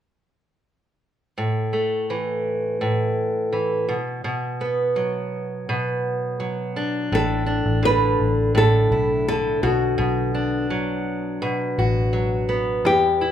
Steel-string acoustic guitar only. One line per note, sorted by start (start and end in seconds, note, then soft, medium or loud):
1.38 2.80 A2 medium
1.73 3.96 A3 soft
2.10 3.51 E3 medium
2.81 3.88 A2 medium
3.53 3.96 E3 soft
3.89 4.23 B2 medium
4.24 5.68 B2 medium
4.61 7.19 B3 soft
4.96 6.39 F#3 medium
5.69 7.12 B2 medium
6.40 7.18 F#3 medium
6.76 7.46 D4 medium
7.12 8.53 A2 medium
7.46 10.34 D4 medium
7.83 9.28 D3 medium
8.55 9.62 A2 medium
8.92 9.70 E4 soft
9.28 10.70 D3 medium
9.63 9.97 B2 medium
9.98 11.41 B2 medium
10.35 12.92 D4 medium
10.70 12.12 F#3 medium
11.42 12.92 B2 medium
11.79 12.93 F#4 medium
12.13 12.92 F#3 medium
12.49 13.32 B3 medium
12.85 13.32 E2 medium
13.21 13.32 E4 medium